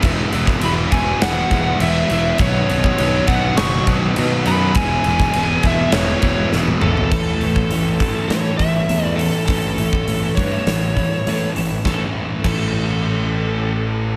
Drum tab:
CC |x-x-x-x-x-x-x-x-|x-x-x-x-x-x-x-x-|x-x-x-x-x-x-----|x---------------|
HH |----------------|----------------|----------------|--o-o-o-o-o-o-o-|
SD |---o----o-------|--------o-------|---o----o---o---|--------o-------|
T1 |----------------|----------------|-------------o--|----------------|
T2 |----------------|----------------|--------------o-|----------------|
FT |----------------|----------------|---------------o|----------------|
BD |o--o--o---o-----|o--o--o---o-----|o--o--o---o-----|o--o--o---o-----|

CC |----------------|----x-----------|
HH |o-o-o-o-o-o-o-o-|----------------|
SD |--------o-------|o---------------|
T1 |----------------|----------------|
T2 |----------------|----------------|
FT |----------------|----------------|
BD |o--o--o---o-----|o---o-----------|